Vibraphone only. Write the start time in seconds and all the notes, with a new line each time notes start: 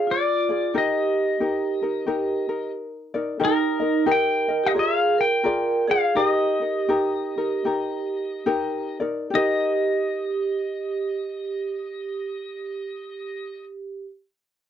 0.07 F4
0.74 G4
3.44 D#4
4.08 A#4
4.64 G4
4.76 G#4
5.18 A#4
5.88 G#4
6.15 G4
9.34 G4